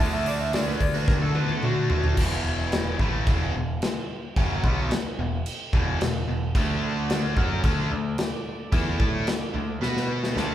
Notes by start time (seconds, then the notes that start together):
0.00 D2 D3 A3 D4 F#4 D5 A5
0.12 A3 D4 F#4 E5
0.26 D3 A3 D4 F#4 D5, open hi-hat
0.41 E5
0.52 D3 A3 D4 F#4 D5, snare, open hi-hat
0.67 A3 D4 F#4 B4
0.80 D2 A3 F#4 D5, muted distorted electric guitar stroke, kick, open hi-hat
0.94 A3 D4 F#4 B4
1.07 D3 A3 D4 F#4 A#4, kick, snare
1.21 A3 D4 F#4 A4
1.35 D3 A3 D4 F#4 B4, high tom
1.49 A4, high tom
1.63 D3 A3 D4 F#4, mid tom
1.90 D2 D3 A3 D4 F#4, floor tom
2.03 A3 D4 F#4, floor tom
2.17 E1 E2 B2 E3, kick, crash
2.72 snare, crash
2.99 A1 A2 E3 A3, kick
3.27 E1 E2 B2 E3, kick, crash
3.54 E1 E2 B2
3.82 snare, crash
4.36 F#1 F#2 C#3 F#3, kick, crash
4.64 B1 B2 F#3 B3, kick
4.91 snare, crash
5.19 E1 E2 B2
5.46 crash
5.73 E1 E2 B2 E3, kick
6.01 E1 E2 B2, snare, crash
6.28 E1 E2 B2
6.54 D2 D3 A3 D4 D5, kick, crash
7.10 snare, crash
7.37 F#2 F#3 C#4 F#4, kick
7.64 D2 D3 A3 D4, kick, crash
7.91 D2 D3 A3
8.18 snare, crash
8.72 E2 E3 B3 E4, kick, crash
9.00 A2 A3 E4 A4, kick
9.27 snare, crash
9.53 D2 D3 A3
9.80 B2 B3 F#4 B4 F#5, snare
9.97 snare
10.24 snare
10.35 D2 D3 A3 D4 A4 A5, snare